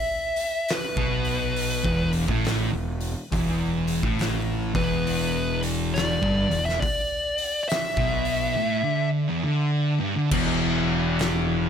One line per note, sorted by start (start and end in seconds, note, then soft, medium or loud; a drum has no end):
0.00 0.74 E5 loud
0.36 open hi-hat medium
0.69 snare loud
0.69 open hi-hat medium
0.73 2.10 B4 medium
0.97 1.81 B1 loud
0.97 1.83 B2 loud
0.97 kick loud
1.25 open hi-hat medium
1.56 open hi-hat medium
1.84 2.25 E1 medium
1.84 2.27 E2 loud
1.84 kick loud
2.13 open hi-hat medium
2.27 2.69 A1 loud
2.27 2.70 A2 loud
2.27 kick loud
2.45 snare loud
2.45 open hi-hat medium
2.72 3.13 E1 medium
2.72 3.09 E2 medium
3.01 open hi-hat medium
3.32 4.00 E1 medium
3.32 4.02 E2 loud
3.32 kick loud
3.32 open hi-hat medium
3.87 open hi-hat medium
4.02 4.71 A1 loud
4.02 4.72 A2 loud
4.02 kick loud
4.19 snare loud
4.19 open hi-hat medium
4.74 6.18 E1 loud
4.74 6.20 E2 loud
4.74 5.59 B4 loud
4.74 kick loud
4.74 open hi-hat medium
5.07 open hi-hat medium
5.63 open hi-hat medium
5.94 6.65 D5 loud
5.94 snare loud
5.94 open hi-hat medium
6.22 6.48 G1 medium
6.22 6.48 G2 loud
6.22 kick loud
6.49 6.80 E1 medium
6.49 6.76 E2 medium
6.49 open hi-hat medium
6.65 6.80 E5 loud
6.65 snare soft
6.80 7.62 D5 loud
6.80 kick loud
6.80 open hi-hat medium
7.38 open hi-hat medium
7.63 7.68 D5 medium
7.69 9.08 E5 medium
7.69 snare loud
7.69 open hi-hat medium
7.97 8.53 B1 medium
7.97 8.56 B2 loud
7.97 kick loud
8.25 open hi-hat medium
8.56 8.83 A2 loud
8.84 9.27 D3 loud
9.27 9.43 E2 loud
9.43 9.98 D3 loud
9.99 10.15 G2 loud
10.16 10.31 D3 loud
10.31 11.69 E1 medium
10.31 11.69 E2 loud
10.31 kick loud
10.31 crash loud
10.31 crash medium
11.19 snare loud
11.19 crash medium